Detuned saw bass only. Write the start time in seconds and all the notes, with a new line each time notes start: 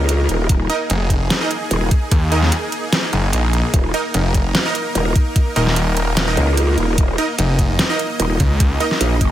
0.90 F1
2.11 D#2
3.13 F#1
3.33 A#1
4.14 F1
5.56 D#1
7.38 F1
8.40 C#2